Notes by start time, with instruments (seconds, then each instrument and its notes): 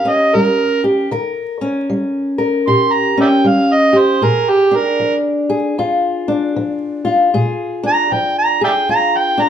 Already playing: steel-string acoustic guitar A#2 G4 A#4, harmonica F5
0.05 steel-string acoustic guitar C#4
0.09 harmonica D#5
0.35 steel-string acoustic guitar G3, harmonica A#4
0.84 steel-string acoustic guitar G4
1.11 steel-string acoustic guitar D#3 A#4
1.61 steel-string acoustic guitar C#4
1.90 steel-string acoustic guitar G3
2.38 steel-string acoustic guitar A#4
2.67 steel-string acoustic guitar A#2 G4, harmonica C6
2.93 harmonica A#5
3.17 steel-string acoustic guitar C#4, harmonica D5 E5 G5
3.44 steel-string acoustic guitar G3, harmonica F5
3.73 harmonica D#5
3.93 steel-string acoustic guitar G4
3.98 harmonica C5
4.21 steel-string acoustic guitar A#2 G#4, harmonica A#4
4.50 harmonica G4
4.71 steel-string acoustic guitar D4
4.76 harmonica A#4
5.00 steel-string acoustic guitar F3
5.50 steel-string acoustic guitar G#4
5.78 steel-string acoustic guitar F2 F4
6.28 steel-string acoustic guitar D4
6.56 steel-string acoustic guitar F3
7.05 steel-string acoustic guitar F4
7.34 steel-string acoustic guitar A#2 G#4
7.83 steel-string acoustic guitar D4, harmonica A#5
8.12 steel-string acoustic guitar F3, harmonica G5
8.38 harmonica A#5
8.61 steel-string acoustic guitar G#4, harmonica D5 E5 G5
8.89 steel-string acoustic guitar F2 F4, harmonica A#5
9.17 harmonica G5
9.38 steel-string acoustic guitar D4
9.43 harmonica A#5